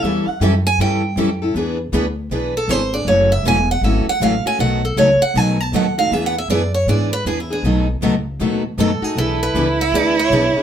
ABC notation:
X:1
M:4/4
L:1/16
Q:"Swing" 1/4=158
K:Emix
V:1 name="Steel-string acoustic guitar"
e2 f2 =g2 ^g2 =g8 | z8 z2 A2 =c2 d2 | c2 e2 g2 f2 e2 f2 =f2 g2 | f2 A2 c2 f2 g2 a2 f2 =f2 |
(3e2 f2 e2 d2 c2 d2 B2 (3G2 E2 G2- | G2 z8 z2 A2 G2 | A2 B4 e2 d2 c6 |]
V:2 name="Violin"
z16 | z16 | z16 | z16 |
z16 | z16 | E16 |]
V:3 name="Steel-string acoustic guitar"
[E,=G,CEA]2 z2 [E,G,CEA] z3 [E,G,CEA]2 z2 [E,G,CEA] z [CEA]2 | [E,B,DG]2 z2 [E,B,DG] z3 [E,B,DG]2 z2 [E,B,DG] z [B,DG]2 | [C,E,A,CF]2 z2 [C,E,A,CF] z3 [C,E,A,CF]2 z2 [C,E,A,CF] z [A,CF]2 | [B,,F,A,^DF]2 z2 [B,,F,A,DF] z3 [B,,F,A,DF]2 z2 [B,,F,A,DF] z [A,DF]2 |
[E,B,DG]2 z2 [E,B,DG] z3 [E,B,DG]2 z2 [E,B,DG] z [B,DG]2 | [B,,F,A,^DF]2 z2 [B,,F,A,DF] z3 [B,,F,A,DF]2 z2 [B,,F,A,DF] z [A,DF]2 | [E,B,DG]2 z2 [E,B,DG] z3 [E,B,DG]2 z2 [E,B,DG] z [B,DG]2 |]
V:4 name="Steel-string acoustic guitar"
[E,=G,CEA]2 z2 [E,G,CEA] z3 [E,G,CEA]2 z2 [E,G,CEA] z3 | [E,B,DGB]2 z2 [E,B,DGB] z3 [E,B,DGB]2 z2 [E,B,DGB] z3 | [F,CEA]2 z2 [F,CEA] z3 [F,CEA]2 z2 [F,CEA] z3 | [B,,^D,F,B,^DA]2 z2 [B,,D,F,B,DA] z3 [B,,D,F,B,DA]2 z2 [B,,D,F,B,DA] z3 |
[E,B,DGB]2 z2 [E,B,DGB] z3 [E,B,DGB]2 z2 [E,B,DGB] z3 | [B,,^D,F,B,^DA]2 z2 [B,,D,F,B,DA] z3 [B,,D,F,B,DA]2 z2 [B,,D,F,B,DA] z3 | [E,B,DGB]2 z2 [E,B,DGB] z3 [E,B,DGB]2 z2 [E,B,DGB] z3 |]
V:5 name="Upright bass" clef=bass
E,,2 z2 F,,4 =G,,4 F,,4 | E,,4 D,,4 B,,,4 G,,,4 | F,,,4 E,,,4 G,,,2 z2 A,,,2 z2 | B,,,4 C,,2 z2 B,,,4 ^D,,4 |
E,,4 F,,4 G,,4 E,,4 | B,,,4 C,,4 ^D,,4 F,,2 z2 | B,,,4 C,,4 D,,4 B,,,2 z2 |]